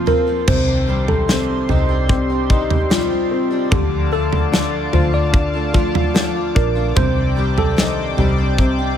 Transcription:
Already playing: upright piano F3 C4, analog synth pad A#3 C5 F5 C6
0.06 steel-string acoustic guitar F3 A#3 C4 F4, upright piano C4, tine electric piano A#4, floor tom
0.27 steel-string acoustic guitar F3 A#3 C4 F4
0.47 fingered electric bass C2, steel-string acoustic guitar C3 D#3 C4 D4 G4, upright piano C3, analog synth pad G4 C5 D5 C6, tine electric piano C5, kick, floor tom, crash
0.87 steel-string acoustic guitar D#3 C4 D4 G4, upright piano G3
1.08 tine electric piano A4, floor tom
1.28 steel-string acoustic guitar C3 D#3 C4 D4 G4, upright piano C4, snare
1.69 fingered electric bass C2, steel-string acoustic guitar D#3 C4 D4 G4, upright piano D#4, tine electric piano G4, floor tom
1.89 steel-string acoustic guitar C4 D4 G4
2.09 upright piano C4, tine electric piano G4, kick
2.30 steel-string acoustic guitar C4 D4 G4
2.50 steel-string acoustic guitar D#3 C4 D4 G4, upright piano D#4, kick
2.70 floor tom
2.90 steel-string acoustic guitar C3 D#3 C4 D4 G4, upright piano G3, tine electric piano F4, snare
3.10 steel-string acoustic guitar C4 D4 G4
3.31 upright piano C4
3.50 steel-string acoustic guitar C4 D4 G4
3.71 fingered electric bass D2, steel-string acoustic guitar D3 F3 A3 D4 F4, upright piano D3, tine electric piano G4, analog synth pad F5 A5 D6, kick, floor tom
4.11 steel-string acoustic guitar F3 A3 D4 F4, upright piano A3, tine electric piano A4
4.33 floor tom
4.52 steel-string acoustic guitar D3 F3 A3 D4 F4, upright piano D4, snare
4.93 fingered electric bass D2, steel-string acoustic guitar F3 A3 D4 F4, upright piano F4, tine electric piano C5, floor tom
5.13 steel-string acoustic guitar A3 D4 F4, tine electric piano D5
5.33 upright piano D4, kick
5.54 steel-string acoustic guitar A3 D4 F4
5.73 steel-string acoustic guitar F3 A3 D4 F4, upright piano F4, kick
5.95 floor tom
6.14 steel-string acoustic guitar D3 F3 A3 D4 F4, upright piano F3, snare
6.34 steel-string acoustic guitar A3 D4 F4
6.55 fingered electric bass A#1, upright piano D4, tine electric piano A#4, kick
6.75 steel-string acoustic guitar A3 D4 F4
6.95 fingered electric bass C2, steel-string acoustic guitar C3 D#3 C4 D4 G4, upright piano C3, analog synth pad C5 D5 G5, tine electric piano C5, kick, floor tom
7.36 steel-string acoustic guitar D#3 C4 D4 G4, upright piano G3
7.58 tine electric piano A4, floor tom
7.77 steel-string acoustic guitar C3 D#3 C4 D4 G4, upright piano D#4, snare
8.17 fingered electric bass C2, steel-string acoustic guitar D#3 C4 D4 G4, upright piano G3, tine electric piano G4, floor tom
8.38 steel-string acoustic guitar C4 D4 G4
8.58 upright piano C3, tine electric piano G4, kick
8.79 steel-string acoustic guitar C4 D4 G4

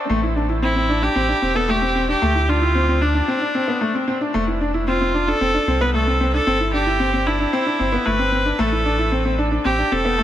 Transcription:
0.09 sub bass A1, grand piano A3
0.23 grand piano E4
0.36 grand piano D4
0.49 grand piano E4
0.62 grand piano C4, viola E4
0.76 grand piano C4
0.89 grand piano D4
1.02 grand piano D4, viola G4
1.16 sub bass A1, grand piano C4
1.29 grand piano D4
1.42 sub bass E1, grand piano C4
1.55 grand piano B3, viola A4
1.69 grand piano A3, viola G4
1.82 grand piano C4
1.95 grand piano C4
2.08 grand piano D4, viola G4
2.22 sub bass D2, grand piano A3
2.35 grand piano E4
2.49 grand piano D4, viola F4
2.62 grand piano E4
2.75 grand piano C4
2.88 grand piano C4
3.02 grand piano D4, viola D4
3.15 grand piano D4
3.28 grand piano C4
3.41 grand piano D4
3.55 grand piano C4
3.68 grand piano B3
3.81 grand piano A3
3.94 grand piano C4
4.08 grand piano C4
4.21 grand piano D4
4.34 sub bass F1, grand piano A3
4.47 grand piano E4
4.61 grand piano D4
4.74 grand piano E4
4.88 grand piano C4, viola F4
5.01 grand piano C4
5.14 grand piano D4
5.28 grand piano D4, viola A4
5.41 sub bass F1, grand piano C4
5.54 grand piano D4
5.67 sub bass C2, grand piano C4
5.81 grand piano B3, viola B4
5.94 grand piano A3, viola A4
6.07 grand piano C4
6.20 grand piano C4
6.34 grand piano D4, viola A4
6.47 sub bass G1, grand piano C4
6.60 grand piano E4
6.73 grand piano D4, viola G4
6.86 grand piano E4
7.00 grand piano C4
7.13 grand piano C4
7.26 grand piano D4, viola E4
7.40 grand piano D4
7.53 grand piano C4
7.66 grand piano D4
7.79 sub bass G1, grand piano C4
7.92 grand piano B3
8.06 sub bass G1, grand piano A3, viola B4
8.19 grand piano C4
8.32 grand piano C4
8.45 grand piano D4
8.59 sub bass A1, grand piano A3, viola A4
8.72 grand piano E4
8.85 grand piano D4
8.99 grand piano E4
9.12 grand piano C4
9.25 grand piano C4
9.38 grand piano D4
9.51 grand piano D4
9.65 sub bass A1, grand piano C4, viola G4
9.78 grand piano D4
9.92 sub bass E1, grand piano C4, viola A4
10.05 grand piano B3
10.18 grand piano A3

